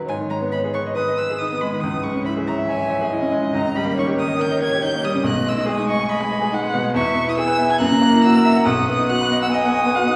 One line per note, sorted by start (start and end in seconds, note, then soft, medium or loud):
0.00 0.10 B1 soft
0.00 0.11 F#2 medium
0.00 0.11 F#3 soft
0.00 0.11 D#4 medium
0.07 1.78 G#2 medium
0.07 1.77 D#3 medium
0.07 0.96 C#5 medium
0.07 0.16 G#5 medium
0.20 0.37 D#3 medium
0.30 0.47 G#3 medium
0.30 0.38 A#5 medium
0.41 0.58 B3 medium
0.52 0.69 D#4 medium
0.52 0.60 B5 medium
0.64 0.81 G#4 medium
0.74 0.91 B4 medium
0.74 0.82 C#6 medium
0.86 1.03 D#5 medium
0.94 2.26 B4 medium
0.94 1.13 B4 medium
0.94 1.19 D#6 loud
1.08 1.24 D#5 medium
1.18 1.35 B4 medium
1.18 1.40 E6 loud
1.30 1.46 G#4 medium
1.39 1.57 D#4 medium
1.39 1.62 D#6 loud
1.52 1.68 B3 medium
1.61 1.78 G#3 medium
1.61 1.82 B5 medium
1.72 1.82 D#3 medium
1.80 3.51 C#2 medium
1.80 3.49 E3 medium
1.80 2.05 D#6 medium
1.94 2.10 G#2 soft
2.03 2.21 G#3 medium
2.03 2.25 C#6 medium
2.15 2.31 C#4 medium
2.25 2.43 E4 medium
2.25 3.10 E5 medium
2.25 2.34 B5 medium
2.37 2.53 G#4 medium
2.47 2.64 C#5 medium
2.47 2.55 A#5 medium
2.58 2.75 E5 medium
2.68 2.85 C#5 medium
2.68 3.31 G#5 medium
2.79 2.96 E5 medium
2.90 3.07 C#5 medium
3.01 3.18 G#4 medium
3.11 3.28 E4 medium
3.11 3.95 D#5 loud
3.21 3.39 C#4 medium
3.32 3.49 G#3 medium
3.43 3.54 G#2 medium
3.53 5.22 C#2 medium
3.53 5.21 D#3 medium
3.53 3.77 A#5 loud
3.65 3.82 C#3 soft
3.75 3.92 G3 medium
3.75 3.97 B5 loud
3.85 4.03 A#3 medium
3.97 4.14 D#4 medium
3.97 5.23 C#5 medium
3.97 4.07 C#6 loud
4.07 4.24 G4 medium
4.17 4.35 A#4 medium
4.17 4.42 D#6 loud
4.27 4.45 D#5 medium
4.39 4.57 A#4 medium
4.39 4.62 G6 loud
4.51 4.68 D#5 medium
4.62 4.79 A#4 medium
4.62 4.83 G#6 loud
4.73 4.90 G4 medium
4.83 5.00 D#4 medium
4.83 5.06 G6 loud
4.95 5.11 A#3 medium
5.04 5.21 G3 medium
5.04 5.28 D#6 loud
5.15 5.26 C#3 medium
5.23 6.91 B1 medium
5.23 6.92 G#3 medium
5.23 5.71 D#5 medium
5.23 5.50 F#6 loud
5.34 5.53 B2 medium
5.46 5.64 G#3 medium
5.46 5.69 E6 loud
5.56 5.74 D#4 medium
5.66 5.84 G#4 medium
5.66 6.56 G#5 medium
5.70 5.89 D#6 loud
5.78 5.96 D#4 medium
5.89 6.06 D#5 medium
5.89 6.11 C#6 loud
5.99 6.17 G#5 medium
6.09 6.27 D#5 medium
6.09 6.74 B5 loud
6.20 6.38 G#5 medium
6.32 6.49 D#5 medium
6.42 6.60 G#4 medium
6.52 6.70 D#4 medium
6.52 6.96 F#5 loud
6.62 6.80 G#3 medium
6.74 6.91 B2 medium
6.83 6.95 G#3 medium
6.94 7.78 E2 medium
6.94 7.82 B3 medium
6.94 7.38 E5 loud
6.94 7.30 C#6 loud
7.05 7.23 B2 medium
7.15 7.33 B3 medium
7.26 7.44 E4 medium
7.26 7.38 D#6 loud
7.37 7.55 G#4 medium
7.37 7.81 G#5 loud
7.37 7.70 E6 loud
7.47 7.66 B4 medium
7.58 7.76 E5 medium
7.70 7.81 G#5 medium
7.70 7.80 G#6 loud
7.80 8.63 F#2 loud
7.80 8.66 A#3 loud
7.80 8.68 A#5 loud
7.80 8.23 F#6 loud
7.92 8.09 C#3 medium
8.02 8.19 A#3 medium
8.13 8.30 E4 medium
8.24 8.41 F#4 medium
8.24 8.66 E6 loud
8.35 8.52 A#4 medium
8.45 8.62 E5 medium
8.56 8.66 F#5 medium
8.66 10.16 B1 loud
8.66 10.16 B3 medium
8.66 9.51 F#5 loud
8.66 9.11 D#6 loud
8.78 8.95 F#2 medium
8.88 9.05 B3 medium
8.98 9.15 D#4 medium
9.09 9.26 F#4 medium
9.09 9.41 F#6 loud
9.21 9.37 B4 medium
9.32 9.48 D#5 medium
9.42 9.59 F#5 medium
9.42 9.53 E6 loud
9.51 9.70 D#5 medium
9.51 9.96 G#5 loud
9.51 10.16 D#6 loud
9.65 9.81 F#5 medium
9.74 9.90 D#5 medium
9.86 10.02 B4 medium
9.95 10.12 F#4 medium
9.95 10.16 F#5 loud
10.07 10.16 D#4 medium